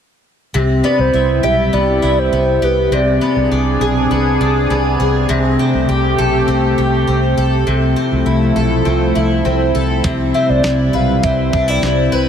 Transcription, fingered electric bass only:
0.55 0.81 C2 medium
0.99 1.12 C2 medium
1.14 1.40 C2 loud
1.44 1.70 B1 medium
1.74 1.99 C2 medium
2.03 2.29 C2 medium
2.33 2.59 C2 loud
2.62 2.88 C2 medium
2.91 3.18 C2 medium
3.36 3.49 C2 medium
3.51 3.77 C2 medium
3.81 4.07 B1 medium
4.11 4.37 C2 medium
4.41 4.67 C2 medium
4.70 4.96 C2 medium
5.00 5.26 C2 medium
5.29 5.55 C2 medium
5.74 5.87 C2 medium
5.89 6.15 C2 medium
6.19 6.45 B1 medium
6.48 6.74 C2 loud
6.78 7.04 C2 medium
7.08 7.34 C2 medium
7.38 7.64 C2 medium
7.67 7.93 C2 medium
8.12 8.25 C2 medium
8.26 8.53 C2 loud
8.56 8.82 B1 medium
8.86 9.12 C2 medium
9.16 9.42 C2 medium
9.46 9.72 C2 loud
9.75 10.01 C2 medium
10.04 10.31 C2 medium
10.49 10.62 C2 medium
10.94 11.20 B1 medium
11.24 11.50 C2 medium
11.54 11.80 C2 medium
11.82 12.09 C2 medium
12.12 12.29 C2 medium

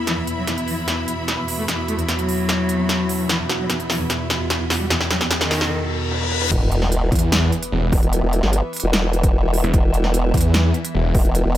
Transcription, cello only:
0.07 0.16 E3 loud
0.17 0.26 E2 medium
0.27 0.36 E2 medium
0.38 0.46 F#3 medium
0.48 0.56 E2 medium
0.58 0.66 E2 medium
0.68 0.76 E3 medium
0.78 0.86 E2 medium
0.88 0.96 E2 medium
1.08 1.17 E2 medium
1.18 1.27 E2 medium
1.38 1.47 E2 medium
1.48 1.57 E2 medium
1.58 1.67 A3 medium
1.68 1.77 E2 medium
1.78 1.87 E2 medium
1.88 1.97 A3 loud
1.98 2.07 E2 medium
2.08 2.17 E2 medium
2.19 3.21 F#3 loud
3.29 3.38 E3 loud
3.40 3.48 E2 medium
3.50 3.58 E2 medium
3.60 3.68 F#3 medium
3.70 3.78 E2 medium
3.80 3.88 E2 medium
3.90 3.99 E3 medium
4.00 4.08 E2 medium
4.10 4.19 E2 medium
4.30 4.39 E2 medium
4.40 4.49 E2 medium
4.60 4.69 E2 medium
4.70 4.79 E2 medium
4.80 4.89 G3 medium
4.90 4.99 E2 medium
5.01 5.09 E2 medium
5.11 5.19 F#3 loud
5.21 5.29 E2 medium
5.31 5.40 E2 medium
5.41 5.71 D#3 loud

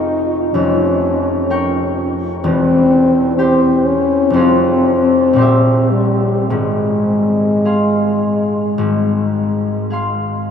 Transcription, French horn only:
0.00 0.56 D#4 medium
0.54 1.97 C#4 medium
2.44 3.34 C4 medium
3.37 3.87 C4 medium
3.85 4.36 C#4 medium
4.34 5.92 C4 medium
5.90 6.49 G3 medium
6.49 9.86 G#3 medium

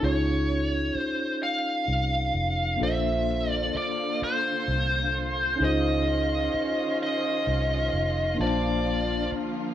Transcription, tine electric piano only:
0.00 2.75 C#4 medium
0.00 2.76 D#4 soft
0.00 2.77 F4 medium
0.00 2.78 G#4 soft
0.06 2.78 C#5 medium
2.76 5.53 A#3 medium
2.76 5.54 D4 soft
2.76 5.55 F4 medium
2.81 5.56 A4 soft
2.81 5.57 C5 medium
5.56 8.33 C#4 medium
5.56 8.34 D#4 soft
5.56 5.66 E4 soft
5.62 8.36 G#4 soft
5.62 8.36 C5 medium
5.66 8.38 F4 medium
8.35 9.74 A#3 medium
8.35 9.74 D4 medium
8.39 9.74 F4 medium
8.39 9.74 C5 medium
8.39 9.74 A5 medium

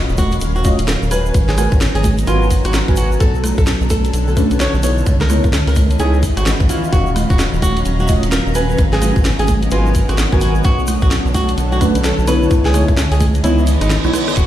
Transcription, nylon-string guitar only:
0.18 0.35 F#4 medium
0.56 0.68 F#4 medium
0.88 1.00 A#4 medium
1.11 1.28 B4 medium
1.49 1.67 G#4 medium
1.95 2.08 G#4 medium
2.27 2.44 F4 loud
2.65 2.77 F#4 loud
2.97 3.09 F#4 medium
3.20 3.37 A4 loud
3.58 3.70 A4 medium
3.90 4.07 A4 loud
4.28 4.40 A4 medium
4.60 4.72 C#5 medium
4.83 5.00 C#5 medium
5.21 5.39 A#4 medium
5.68 5.80 A#4 medium
6.00 6.16 G#4 medium
6.37 6.49 F#4 medium
6.69 6.81 E4 medium
6.93 7.09 F#4 medium
7.30 7.43 F#4 medium
7.62 7.79 F#4 loud
8.00 8.12 F#4 medium
8.32 8.44 A#4 medium
8.55 8.72 B4 medium
8.93 9.11 G#4 loud
9.39 9.52 G#4 medium
9.72 9.88 F4 loud
10.09 10.22 F#4 loud
10.41 10.53 F#4 medium
10.65 10.81 F#4 loud
11.02 11.15 F#4 medium
11.34 11.51 F#4 medium
11.72 11.85 F#4 medium
12.04 12.16 A4 medium
12.28 12.44 B4 medium
12.65 12.84 G#4 loud
13.12 13.24 G#4 medium
13.44 13.60 E4 loud
13.81 13.94 D#4 medium
14.13 14.25 B3 medium
14.37 14.47 F#4 loud

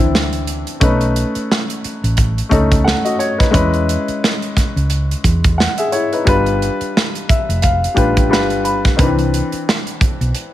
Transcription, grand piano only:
0.00 0.83 E3 medium
0.00 0.83 C4 medium
0.00 0.83 D4 medium
0.00 0.70 E4 medium
0.00 0.83 B4 medium
0.80 1.99 A3 medium
0.80 2.00 C#4 medium
0.80 2.00 D#4 medium
0.80 2.01 B4 medium
2.49 3.40 A3 medium
2.49 3.41 C#4 medium
2.49 2.86 D#4 medium
2.49 2.83 A4 medium
2.84 3.04 A4 soft
2.84 3.04 F#5 medium
3.04 3.19 F#4 soft
3.04 3.19 D#5 medium
3.19 3.38 C#5 medium
3.38 3.72 D#4 soft
3.38 3.53 B4 soft
3.51 4.71 G#3 medium
3.51 4.71 C#4 medium
3.51 4.72 E4 medium
3.51 4.72 B4 medium
5.58 5.77 F#5 medium
5.78 5.92 G#4 soft
5.78 5.92 E5 medium
5.92 6.11 E4 medium
5.92 6.11 C#5 medium
6.13 6.45 D#4 soft
6.13 6.27 B4 soft
6.25 7.44 G3 medium
6.25 7.45 D4 medium
6.25 7.45 F4 medium
6.25 7.46 B4 medium
7.29 7.61 E5 medium
7.62 7.94 F5 medium
7.94 8.28 G3 medium
7.94 8.29 D4 medium
7.94 8.30 F4 medium
7.94 8.31 B4 medium
7.94 8.28 G5 soft
8.29 8.90 G3 medium
8.29 8.90 D4 medium
8.29 8.91 F4 medium
8.29 8.91 B4 medium
8.29 8.62 B5 medium
8.64 8.96 B5 medium
8.96 9.05 D#3 medium
8.96 10.16 C4 medium
8.96 10.17 D4 medium
8.96 10.17 B4 medium
9.03 10.19 E3 medium

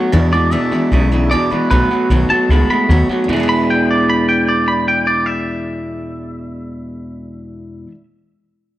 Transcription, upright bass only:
0.13 0.55 E2 medium
0.72 muted upright bass stroke medium
0.91 1.33 B1 medium
1.51 muted upright bass stroke medium
1.71 1.85 B1 medium
1.90 muted upright bass stroke medium
2.10 2.27 B1 medium
2.49 2.66 C#2 medium
2.89 3.06 D#2 medium
3.09 muted upright bass stroke medium
3.28 7.82 E2 medium

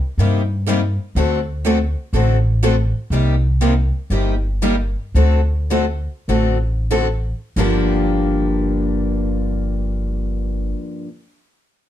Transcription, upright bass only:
0.18 0.96 G2 medium
1.15 1.94 D2 medium
2.13 2.91 A1 medium
3.10 3.90 C2 medium
4.10 4.93 G1 medium
5.14 6.06 D2 medium
6.28 7.31 A1 medium
7.56 10.72 G1 medium

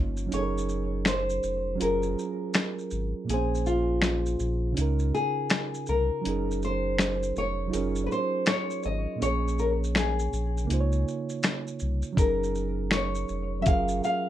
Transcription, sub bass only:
0.00 0.30 G1 medium
0.33 1.40 F#1 loud
1.44 1.78 F1 medium
1.81 2.16 F#1 loud
2.92 3.14 G#1 medium
3.29 4.36 A#1 medium
4.40 4.75 A#1 medium
4.78 5.12 C#2 loud
5.89 6.10 C2 medium
6.26 7.33 F#1 loud
7.37 7.71 F1 medium
7.74 8.08 F#1 loud
8.85 9.07 G#1 loud
9.22 10.29 A#1 medium
10.33 10.67 A#1 medium
10.70 11.05 C#2 loud
11.82 12.03 C2 medium
12.18 13.25 F#1 loud
13.30 13.64 F1 medium
13.67 14.01 F#1 loud

